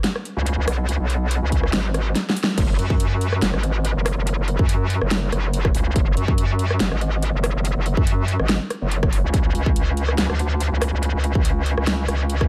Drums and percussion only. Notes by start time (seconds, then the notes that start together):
0.04 snare, closed hi-hat
0.16 cross-stick
0.25 closed hi-hat
0.46 closed hi-hat
0.68 cross-stick, open hi-hat
0.89 closed hi-hat
1.10 closed hi-hat
1.31 closed hi-hat
1.52 kick, closed hi-hat
1.63 cross-stick
1.73 snare, closed hi-hat
1.94 cross-stick, closed hi-hat
2.15 snare, closed hi-hat
2.30 snare
2.37 open hi-hat
2.44 snare
2.58 kick, closed hi-hat, crash
2.79 closed hi-hat
2.90 kick
3.00 closed hi-hat
3.21 closed hi-hat
3.32 cross-stick
3.42 snare, closed hi-hat
3.54 cross-stick
3.63 closed hi-hat
3.85 closed hi-hat
4.06 cross-stick, open hi-hat
4.27 closed hi-hat
4.48 closed hi-hat
4.59 kick
4.69 closed hi-hat
4.90 closed hi-hat
5.01 cross-stick
5.11 snare, closed hi-hat
5.32 cross-stick, closed hi-hat
5.54 closed hi-hat
5.65 kick, cross-stick
5.75 open hi-hat
5.96 kick, closed hi-hat
6.17 closed hi-hat
6.28 kick
6.38 closed hi-hat
6.59 closed hi-hat
6.70 cross-stick
6.80 snare, closed hi-hat
6.92 cross-stick
7.01 closed hi-hat
7.22 closed hi-hat
7.44 cross-stick, open hi-hat
7.65 closed hi-hat
7.86 closed hi-hat
7.97 kick
8.07 closed hi-hat
8.28 closed hi-hat
8.39 cross-stick
8.49 snare, closed hi-hat
8.70 cross-stick, closed hi-hat
8.92 closed hi-hat
9.03 kick, cross-stick
9.13 open hi-hat
9.34 kick, closed hi-hat
9.55 closed hi-hat
9.66 kick
9.76 closed hi-hat
9.97 closed hi-hat
10.08 cross-stick
10.18 snare, closed hi-hat
10.30 cross-stick
10.39 closed hi-hat
10.60 closed hi-hat
10.82 cross-stick, open hi-hat
11.03 closed hi-hat
11.24 closed hi-hat
11.35 kick
11.45 closed hi-hat
11.66 closed hi-hat
11.78 cross-stick
11.87 snare, closed hi-hat
12.08 cross-stick, closed hi-hat
12.30 closed hi-hat
12.41 kick, cross-stick